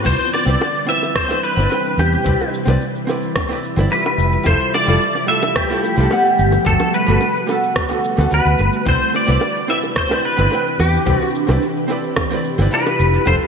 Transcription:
0.03 C2 C3 E3 G3 C4 D4 E4 B4 C5 D5, kick, crash, shaker
0.20 shaker
0.33 D5, high bongo, shaker
0.45 C2 C4 E4 B4 D5, shaker
0.61 high bongo, shaker
0.75 shaker
0.86 C4 E4 B4 E5, shaker
0.91 D5
1.03 high bongo, shaker
1.16 C5, kick, cross-stick, shaker
1.28 C4 E4 B4 D5, high bongo, shaker
1.43 B4, shaker
1.56 G1 C4 E4 B4, shaker
1.60 D5
1.69 C4 E4 B4, high bongo, shaker
1.74 G5
1.85 shaker
1.98 E2 G4, high bongo, shaker
2.12 shaker
2.24 C2 C4 E4 B4 E5, kick, shaker
2.28 D5
2.41 high bongo, shaker
2.54 shaker
2.65 C2 C4 E4 B4, high bongo, shaker
2.69 D5
2.82 shaker
2.96 shaker
3.07 C4 E4 B4 D5, high bongo, shaker
3.23 shaker
3.36 kick, cross-stick, high bongo, shaker
3.49 C4 E4 B4 D5, shaker
3.64 shaker
3.76 G1 C4 E4 B4, high bongo, shaker
3.80 D5
3.90 G3 E4 F4 B4, shaker
3.94 D5
4.05 high bongo, shaker
4.17 F1 F3 A3, shaker
4.33 shaker
4.43 F1 G3 E4 F4 C5, kick, high bongo, shaker
4.48 A4
4.60 shaker
4.74 D5, high bongo, shaker
4.85 F1 G3 E4 F4, shaker
4.90 A4
5.01 shaker
5.15 high bongo, shaker
5.27 G3 E4 F4 E5, shaker
5.31 A4
5.43 high bongo, shaker
5.56 G4, kick, cross-stick, shaker
5.69 G3 E4 F4 A4, shaker
5.84 high bongo, shaker
5.96 C2 G3 E4 F4 A4, shaker
6.10 G3 B3 D5 F#5, high bongo, shaker
6.25 shaker
6.39 G1 D3 A3 F#4 B4, shaker
6.52 high bongo, shaker
6.65 G1 G3 B3 F#4 A4, kick, shaker
6.69 A4
6.80 high bongo, shaker
6.94 B4, shaker
7.06 G1 G3 B3 F#4 A4, shaker
7.21 high bongo, shaker
7.36 shaker
7.47 G3 B3 F#4, high bongo, shaker
7.51 A4
7.63 shaker
7.76 kick, cross-stick, shaker
7.89 G3 B3 F#4, high bongo, shaker
7.93 A4
8.04 shaker
8.17 D2 G3 B3 F#4 A4, high bongo, shaker
8.31 D2 G3 B3 F#4 B4 D5, shaker
8.45 D2, shaker
8.59 G1, high bongo, shaker
8.73 shaker
8.85 C2 C3 E3 C4 D4 E4 G4 B4 C5 D5, kick, shaker
9.01 shaker
9.14 D5, high bongo, shaker
9.26 C2 C4 E4 B4, shaker
9.30 D5
9.41 high bongo, shaker
9.56 shaker
9.68 C4 E4 B4 D5 E5, shaker
9.83 high bongo, shaker
9.96 C5, kick, cross-stick, shaker
10.09 C4 E4 B4 D5, high bongo, shaker
10.24 B4, shaker
10.37 G1 C4 E4 B4, shaker
10.41 D5
10.50 C4 E4 B4, high bongo, shaker
10.54 G5
10.67 shaker
10.79 E2 G4, high bongo, shaker
10.94 shaker
11.06 C2 C4 E4 B4 D5, kick, shaker
11.17 F#4
11.21 high bongo, shaker
11.35 shaker
11.47 C2 C4 E4 B4, high bongo, shaker
11.51 D5
11.62 shaker
11.76 shaker
11.88 C4 E4 B4, high bongo, shaker
11.92 D5
12.04 shaker
12.16 kick, cross-stick, high bongo, shaker
12.30 C4 E4 B4 D5, shaker
12.45 shaker
12.58 G1 C4 E4 B4 D5, high bongo, shaker
12.71 G3 E4 F4 B4 D5, shaker
12.86 high bongo, shaker
12.99 F1, shaker
13.14 shaker
13.25 F1 G3 E4 F4 C5, kick, high bongo, shaker
13.29 A4
13.41 shaker

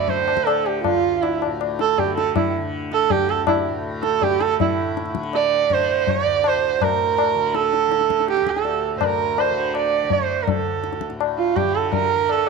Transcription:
Already playing: D2 A2 D3 D5
0.08 C5, tabla tin, tabla ge
0.28 tabla na
0.35 D3, tabla ke
0.47 A4, tabla na
0.66 G4, tabla na
0.84 F4, tabla na, tabla ge
0.92 D2
1.22 E4, tabla na
1.42 tabla na
1.46 A2
1.61 tabla na
1.79 A4, tabla te
1.98 G4, tabla tin, tabla ge
2.02 D3
2.17 A4, tabla te
2.36 E4, tabla na, tabla ge
2.58 D3
2.92 A4, tabla te
3.10 D2 G4, tabla tin, tabla ge
3.29 A4, tabla te
3.47 E4, tabla na, tabla ge
3.68 A2
4.03 A4, tabla te
4.22 D3 G4, tabla tin, tabla ge
4.41 A4, tabla te
4.60 A2 E4, tabla tin, tabla ge
4.97 tabla te
5.06 tabla te
5.15 D3, tabla ke
5.23 tabla te
5.33 D5, tabla na
5.70 D3 C5, tabla na, tabla ge
6.07 D5, tabla tin, tabla ge
6.25 D2
6.44 C5, tabla na
6.79 A2 A#4, tabla na, tabla ge
7.18 tabla na
7.35 D3
7.55 A4, tabla te
7.73 tabla te
7.87 D3
7.92 tabla te
8.01 tabla te
8.10 tabla ke
8.20 tabla te
8.28 G4, tabla te
8.37 tabla te
8.41 D2
8.47 A4, tabla ke
8.56 tabla te
8.65 tabla tin
8.95 A2 C5
9.01 A#4, tabla na, tabla ge
9.38 C5, tabla na
9.50 D3
9.75 D5, tabla na
10.03 D3
10.10 C5, tabla tin, tabla ge
10.43 A#4
10.48 A4, tabla tin, tabla ge
10.57 D2
10.83 tabla te
10.93 tabla te
11.01 tabla ke
11.10 A2, tabla te
11.21 tabla na
11.38 F4
11.56 G4, tabla na, tabla ge
11.62 D3
11.75 A4
11.92 A#4, tabla tin, tabla ge
12.15 D3
12.29 A4, tabla na

